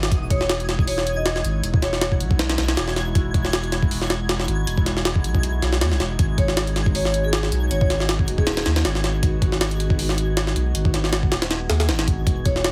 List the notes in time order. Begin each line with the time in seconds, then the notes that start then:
Already playing: G#1 D#6, swell
0.03 snare, closed hi-hat
0.12 E1 G#3 D#4 E4 F#4 G#6, kick, closed hi-hat
0.30 C#5, kick, closed hi-hat
0.41 snare
0.49 snare, closed hi-hat
0.60 closed hi-hat
0.69 snare, closed hi-hat
0.79 kick
0.87 E1 C#5, open hi-hat
0.98 C#5, snare
1.07 closed hi-hat
1.17 D#5
1.26 snare, closed hi-hat
1.36 snare
1.44 G#1, closed hi-hat
1.64 E1, closed hi-hat
1.74 kick
1.82 C#5, snare, closed hi-hat
1.93 snare
2.01 snare, closed hi-hat
2.12 kick
2.20 B1, closed hi-hat
2.31 kick
2.39 snare, closed hi-hat
2.50 snare, closed hi-hat
2.58 B1, snare, closed hi-hat
2.68 snare, closed hi-hat
2.77 E1, snare, closed hi-hat
2.88 snare
2.96 snare, closed hi-hat
3.15 E1, kick, closed hi-hat
3.34 kick, closed hi-hat
3.45 snare
3.53 snare, closed hi-hat
3.64 closed hi-hat
3.72 snare, closed hi-hat
3.83 kick
3.91 E1, open hi-hat
4.02 snare
4.10 snare, closed hi-hat
4.29 snare, closed hi-hat
4.40 snare
4.48 G#1, closed hi-hat
4.67 E1, closed hi-hat
4.78 kick
4.86 snare, closed hi-hat
4.97 snare
5.05 snare, closed hi-hat
5.16 kick
5.24 B1, closed hi-hat
5.35 kick
5.43 closed hi-hat
5.62 B1, snare, closed hi-hat
5.73 snare
5.81 E2, snare, closed hi-hat
5.91 B1, snare
6.00 E1, snare, closed hi-hat
6.19 G#1 B3 F#4, kick, closed hi-hat
6.38 C#5, kick, closed hi-hat
6.48 snare
6.57 snare, closed hi-hat
6.67 closed hi-hat
6.76 snare, closed hi-hat
6.86 kick
6.95 G#1 C#5, open hi-hat
7.05 C#5, snare
7.14 closed hi-hat
7.25 G#4
7.33 snare, closed hi-hat
7.43 snare
7.52 B1, closed hi-hat
7.71 G#1 C#5, closed hi-hat
7.81 C#5, kick
7.90 snare, closed hi-hat
8.00 snare
8.09 snare, closed hi-hat
8.19 kick
8.28 D#1, closed hi-hat
8.38 G#4, kick
8.47 G#4, snare, closed hi-hat
8.57 snare, closed hi-hat
8.66 D#2, snare, closed hi-hat
8.76 snare, closed hi-hat
8.85 G#1, snare, closed hi-hat
8.95 snare
9.04 snare, closed hi-hat
9.23 G#1, kick, closed hi-hat
9.42 kick, closed hi-hat
9.52 snare
9.61 snare, closed hi-hat
9.71 closed hi-hat
9.80 closed hi-hat
9.90 kick
9.99 G#1, open hi-hat
10.09 snare
10.18 closed hi-hat
10.37 snare, closed hi-hat
10.47 snare
10.56 B1, closed hi-hat
10.75 G#1, closed hi-hat
10.85 kick
10.94 snare, closed hi-hat
11.04 snare
11.13 snare, closed hi-hat
11.23 kick
11.32 D#1, snare, closed hi-hat
11.42 snare, closed hi-hat
11.51 snare, closed hi-hat
11.70 D#2, snare, closed hi-hat
11.80 snare, closed hi-hat
11.89 G#1, snare, closed hi-hat
11.99 snare, closed hi-hat
12.08 kick, closed hi-hat
12.26 E1 G#3 D#4 E4 F#4, kick, closed hi-hat
12.46 C#5, kick, closed hi-hat
12.56 snare
12.64 snare, closed hi-hat